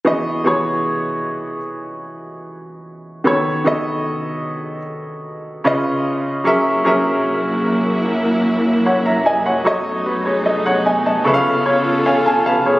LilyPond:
<<
  \new Staff \with { instrumentName = "Grand piano" } { \time 4/4 \key e \major \tempo 4 = 75 << { r1 | r1 | r2. <cis'' fis''>16 <e'' ais''>16 <dis'' gis''>16 <cis'' fis''>16~ | <cis'' fis''>16 r16 <fis' b'>16 <gis' cis''>16 <a' dis''>16 <cis'' fis''>16 <dis'' gis''>16 <dis'' a''>8 r16 cis''8 <cis'' eis'' gis''>16 <gis'' a''>16 <b' eis'' a''>16 <gis' cis''>16 | } \\ { <e b fis' gis' dis''>8 <e b fis' gis' cis''>4. r2 | <dis b fis' a' cis''>8 <dis b fis' a' dis''>4. r4 <cis cis' eis' b' dis''>4 | <fis cis' gis' ais' e''>8 <fis cis' gis' ais' e''>4. r2 | <fis fis' a' cis'' dis''>8 r4. <cis cis' a' b' e'' eis''>4. r8 | } >> }
  \new Staff \with { instrumentName = "String section" } { \time 4/4 \key e \major << { r1 | r1 | <fis ais e'>1 | <a b dis'>2 <eis' a'>2 | } \\ { r1 | r1 | fis,1~ | fis,2 cis2 | } >> }
>>